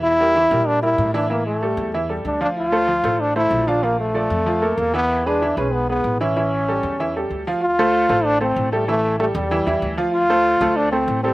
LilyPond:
<<
  \new Staff \with { instrumentName = "Upright piano" } { \time 4/4 \key d \minor \tempo 4 = 190 <e e' e''>8 <g g' bes'>8 <e e' e''>8 <g g' bes'>4 <g g' bes'>4 <e e' e''>8 | <e e' e''>4 <g g' a'>4 <e e' e''>8 <g g' a'>4 <f f' f''>8~ | <f f' f''>8 <a a' c''>8 <f f' f''>8 <a a' c''>4 <a a' c''>4 <f f' f''>8 | <f f' f''>4 <f a' d''>4 <f f' f''>8 <bes a' bes'>4 <e e' e''>8~ |
<e e' e''>8 <gis gis' b'>8 <e e' e''>8 <gis gis' b'>4 <gis gis' b'>4 <e e' e''>8 | <e e' e''>4 <g g' a'>4 <e e' e''>8 <g g' a'>4 <f f' f''>8 | r8 <a a' c''>4 <a a' c''>4 <a a' c''>4 <g g' a'>8 | <e e' e''>4 <g g' a'>4 <e e' e''>8 <e e' e''>4 <f f' f''>8~ |
<f f' f''>8 <a a' c''>4 <a a' c''>4 <a a' c''>4 <g g' a'>8 | }
  \new Staff \with { instrumentName = "Trombone" } { \time 4/4 \key d \minor e'2 d'8 e'4 d'8 | bes8 a4. r4 d'8 d'8 | f'2 d'8 e'4 d'8 | bes8 a2~ a8 bes8 b8~ |
b8 d'4 cis'8 b8 b4 cis'8~ | cis'2. r4 | f'2 d'8 c'4 a8 | a4 a8 g2 r8 |
f'2 d'8 c'4 c'8 | }
  \new Staff \with { instrumentName = "Upright bass" } { \clef bass \time 4/4 \key d \minor e,4. bes,4. a,4~ | a,4. e,4. d,4~ | d,4. a,,4. bes,,4~ | bes,,4. f,4. e,4~ |
e,4. b,,4. a,,4~ | a,,4. e,4. d,4~ | d,4. a,,4. a,,4~ | a,,4. e,4 e,8 d,4~ |
d,4. d,4. a,,4 | }
>>